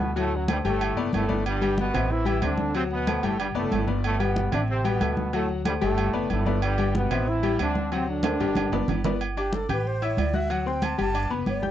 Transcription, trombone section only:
0.00 0.14 B2 medium
0.00 0.14 B3 loud
0.18 0.32 A2 medium
0.18 0.32 A3 loud
0.36 0.50 F#2 medium
0.36 0.50 F#3 medium
0.52 0.59 G2 medium
0.52 0.58 G3 loud
0.67 1.11 A2 medium
0.67 1.11 A3 loud
1.15 1.45 A2 medium
1.15 1.45 A3 loud
1.47 1.77 G2 medium
1.47 1.77 G3 loud
1.80 2.09 B2 medium
1.80 2.09 B3 loud
2.12 2.27 E3 medium
2.12 2.27 E4 loud
2.28 2.42 E3 medium
2.28 2.42 E4 loud
2.44 2.76 D3 medium
2.44 2.76 D4 loud
2.77 2.84 C3 medium
2.77 2.84 C4 loud
2.92 3.22 B2 medium
2.92 3.22 B3 loud
3.24 3.40 A2 medium
3.24 3.40 A3 medium
3.40 3.47 G2 medium
3.40 3.47 G3 loud
3.57 3.86 A2 medium
3.57 3.86 A3 loud
4.06 4.20 A2 medium
4.06 4.20 A3 loud
4.21 4.53 B2 medium
4.21 4.53 B3 loud
4.54 4.61 D3 medium
4.54 4.61 D4 loud
4.70 4.85 C3 medium
4.70 4.85 C4 loud
4.87 5.34 B2 medium
4.87 5.34 B3 loud
5.35 5.50 A2 medium
5.35 5.49 A3 loud
5.67 5.74 G2 medium
5.67 5.74 G3 loud
5.83 6.27 A2 medium
5.83 6.27 A3 loud
6.32 6.61 A2 medium
6.32 6.61 A3 loud
6.63 6.93 G2 medium
6.63 6.93 G3 loud
6.97 7.28 B2 medium
6.97 7.28 B3 loud
7.28 7.60 E3 medium
7.28 7.60 E4 loud
7.61 7.90 D3 medium
7.61 7.90 D4 loud
7.93 8.09 C3 medium
7.93 8.08 C4 loud
8.09 9.02 D3 medium
8.09 9.01 D4 loud

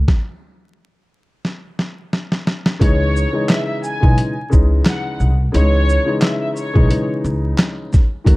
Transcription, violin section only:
2.80 3.44 C#5 loud
3.50 3.65 E5 loud
3.67 3.81 E5 medium
3.84 4.33 G#5 loud
4.86 5.17 F#5 medium
5.53 6.18 C#5 loud
6.22 6.39 E5 medium
6.40 6.54 E5 medium
6.56 7.06 C#5 medium

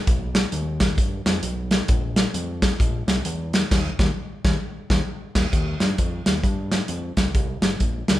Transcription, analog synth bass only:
0.07 0.46 B1 medium
0.52 1.00 D#2 medium
0.98 1.22 G2 medium
1.26 1.41 F2 medium
1.43 1.82 B1 medium
1.89 2.28 A#1 medium
2.34 2.73 F2 medium
2.80 3.03 A#1 loud
3.07 3.23 C2 medium
3.26 3.64 E2 medium
3.72 3.90 D#2 loud
3.99 4.11 D#2 loud
4.45 4.57 D#2 loud
4.90 5.02 D#2 loud
5.35 5.47 D#2 loud
5.53 5.76 D#2 medium
5.81 5.96 G2 medium
5.99 6.22 F2 medium
6.27 6.42 D#2 medium
6.44 6.83 G2 medium
6.89 7.13 F2 medium
7.17 7.32 C#2 medium
7.35 7.59 C2 medium
7.62 7.77 G1 medium
7.80 8.04 A#1 medium
8.09 8.20 D2 medium

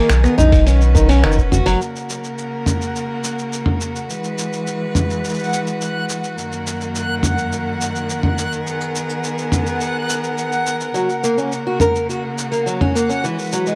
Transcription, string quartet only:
0.00 1.77 D#3 medium
0.00 0.66 G#4 medium
0.00 0.63 A#4 medium
0.66 1.80 C#4 medium
0.66 1.79 F#4 medium
0.66 1.79 B4 medium
1.80 4.07 C#3 medium
1.80 4.07 A#3 medium
1.80 8.62 F#4 medium
1.80 4.07 A#4 medium
4.08 6.35 E3 medium
4.08 6.35 G#3 medium
4.08 6.35 B4 medium
6.36 8.64 F#2 medium
6.36 10.91 D#3 medium
6.36 8.63 A#3 medium
6.36 13.19 A#4 medium
8.66 10.93 B3 medium
8.66 10.93 G#4 medium
10.96 13.22 C#3 medium
10.96 13.22 A#3 medium
10.96 13.75 F#4 medium
13.24 13.75 E3 medium
13.24 13.75 G#3 medium
13.24 13.75 B4 medium

